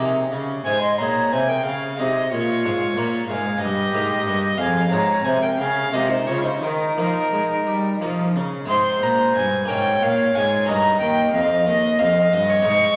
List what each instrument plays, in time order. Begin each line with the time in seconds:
Already playing: harpsichord C3 A#3 D#4 G4, cello C3, flute G#4, violin D#5
0.31 cello C#3, harpsichord C#3
0.65 cello G#2, harpsichord G#2 G#3, flute C5, violin G#5
0.82 flute D#5, violin C6
0.98 cello A#2, harpsichord A#2 C4 D#4 G#4, flute C#5, violin A#5
1.32 cello C3, harpsichord C3, flute C5, violin G#5
1.48 flute A#4, violin G5
1.65 harpsichord C#3, cello C#3, flute G#4, violin F5
1.98 harpsichord C3 C4 D#4 G#4, cello C3, flute G4, violin D#5
2.31 cello A#2, harpsichord A#2, flute F4, violin C#5
2.65 cello G#2, harpsichord G#2 G#3
2.97 cello A#2, harpsichord A#2 A#3 F4 A#4
3.28 cello G#2, harpsichord G#2, flute G#4, violin F5
3.60 cello G2, harpsichord G2, flute G4, violin D#5
3.92 cello G#2, harpsichord G#2 A#3 D#4 A#4
4.26 cello G2, harpsichord G2
4.58 cello F2, harpsichord F2, flute G#4, violin F5
4.91 cello G#2, harpsichord G#2 G#3 C4 F4, flute C#5, violin A#5
5.24 cello C3, harpsichord C3, flute C5, violin G#5
5.41 flute A#4, violin G5
5.58 cello C#3, harpsichord C#3, flute G#4, violin F5
5.92 cello C3, harpsichord C3 G#3 A#3 F4, flute G4, violin D#5
6.09 flute D#4, violin C5
6.26 cello C#3, harpsichord C#3, flute F4, violin C#5
6.43 flute D#4, violin C5
6.62 harpsichord D#3, cello D#3, flute D#4, violin A#4
6.98 cello F3, harpsichord F3 A#3 D#4
7.32 cello G#3, harpsichord G#3
7.67 cello G3, harpsichord G3
8.01 cello F3, harpsichord F3 A#3 D#4
8.36 cello C#3, harpsichord C#3
8.65 harpsichord G#3 C4 D#4, flute C5, violin C6
8.69 cello G#2, harpsichord G#2
9.02 harpsichord A#2, cello A#2, violin A#5
9.36 harpsichord G2, cello G2, violin G#5
9.65 harpsichord A#3 C#4 A#4
9.69 harpsichord G#2, cello G#2, flute C#5, violin G5
10.02 harpsichord A#2, cello A#2, violin F5
10.36 cello G#2, harpsichord G#2, violin G#5
10.65 cello G2, harpsichord C#4 D#4 A#4, flute D#5, violin A#5
10.70 harpsichord G2
11.01 cello D#2, harpsichord D#2, violin G5
11.34 cello F2, harpsichord F2, violin F5
11.66 cello D#2, harpsichord D#2, violin D#5
11.99 harpsichord F2, cello F2, violin F5
12.32 cello G2, harpsichord G2, violin D#5
12.49 violin C#5
12.61 harpsichord C4 D#4 D#5, violin C#6
12.66 harpsichord G#2, cello G#2